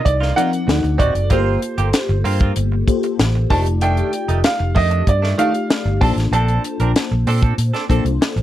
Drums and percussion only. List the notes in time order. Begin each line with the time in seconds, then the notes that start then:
0.06 kick, closed hi-hat
0.22 snare
0.38 closed hi-hat
0.53 closed hi-hat
0.69 snare, closed hi-hat
0.84 closed hi-hat
1.00 kick, closed hi-hat
1.15 closed hi-hat
1.30 kick, closed hi-hat
1.62 closed hi-hat
1.78 closed hi-hat
1.93 snare, closed hi-hat
2.25 open hi-hat
2.40 kick, closed hi-hat
2.56 closed hi-hat
2.88 kick, closed hi-hat
3.03 closed hi-hat
3.19 snare, closed hi-hat
3.50 kick, open hi-hat
3.66 closed hi-hat
3.81 closed hi-hat
3.97 closed hi-hat
4.13 closed hi-hat
4.29 closed hi-hat
4.44 snare, closed hi-hat
4.75 kick, open hi-hat
4.91 closed hi-hat
5.07 kick, closed hi-hat
5.24 snare
5.39 closed hi-hat
5.55 closed hi-hat
5.71 snare, closed hi-hat
6.02 kick, open hi-hat
6.18 snare, closed hi-hat
6.33 closed hi-hat
6.48 closed hi-hat
6.64 closed hi-hat
6.80 closed hi-hat
6.96 snare, closed hi-hat
7.27 open hi-hat
7.42 kick, closed hi-hat
7.58 closed hi-hat
7.74 snare, closed hi-hat
7.90 kick, closed hi-hat
8.06 closed hi-hat
8.22 snare, closed hi-hat
8.37 closed hi-hat